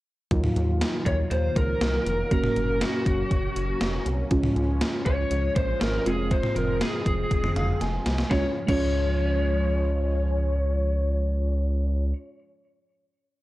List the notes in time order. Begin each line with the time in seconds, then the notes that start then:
0.31 D#2 D#3 F#3 A#3 D#4 F4, kick, closed hi-hat
0.44 mid tom
0.56 D#2, closed hi-hat
0.81 snare, closed hi-hat
1.06 D#2 C#5, kick, closed hi-hat
1.31 D#2 C5, closed hi-hat
1.56 C#2 A#4, kick, closed hi-hat
1.81 C2, snare, closed hi-hat
2.06 F1, closed hi-hat
2.31 F#1 A#3 C#4 F#4 A#4, kick, closed hi-hat
2.44 mid tom
2.56 F#1, closed hi-hat
2.81 F#4, snare, closed hi-hat
3.06 F#1, kick, closed hi-hat
3.31 F#1, kick, closed hi-hat
3.56 F#1, closed hi-hat
3.81 F1, snare, closed hi-hat
4.06 C2, closed hi-hat
4.31 C#2 F3 G#3 C#4 F4, kick, closed hi-hat
4.44 mid tom
4.56 C#2, closed hi-hat
4.81 snare, closed hi-hat
5.06 C#2 C#5, kick, closed hi-hat
5.31 C#2, closed hi-hat
5.56 A#1 C5, kick, closed hi-hat
5.81 G#1 A#4, snare, closed hi-hat
6.06 F1 G#3 C4 F4 G#4, closed hi-hat
6.31 C5, kick, closed hi-hat
6.43 mid tom
6.56 F1 A#4, closed hi-hat
6.81 G#4, snare, closed hi-hat
7.06 F1, kick, closed hi-hat
7.31 F1, kick, closed hi-hat
7.44 mid tom
7.56 F#1 F5, closed hi-hat, mid tom
7.81 F1 G#5, snare, closed hi-hat
8.06 C2, snare, closed hi-hat
8.18 snare
8.29 C#2 F3 G#3 C#4 F4 C#5, kick, snare
8.67 C#2 G#3 C#4 F4 C#5, kick, crash